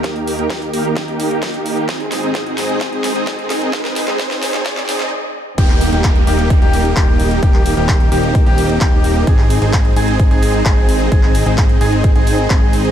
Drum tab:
CC |----------------|----------------|----------------|x---------------|
HH |xxoxxxo-xxoxxxox|xxoxxxoxxxoxxxox|xxo-xxoxxxo-----|x-oxxxoxxxoxx-ox|
CP |----------------|----------------|----------------|-x--x-------x---|
SD |o---o---o---o---|o-o-o-o-o-o-o-o-|oooooooooooo----|----------------|
BD |o---o---o---o---|o---o---o---o---|o---o---o-------|o---o---o---o---|

CC |----------------|----------------|----------------|
HH |x-oxxxoxxxoxx-ox|x-oxxxoxxxoxx-ox|x-oxxxoxxxoxx-ox|
CP |-x--x-------x---|-x--x-------x---|-x--x-------x---|
SD |----------------|----------------|----------------|
BD |o---o---o---o---|o---o---o---o---|o---o---o---o---|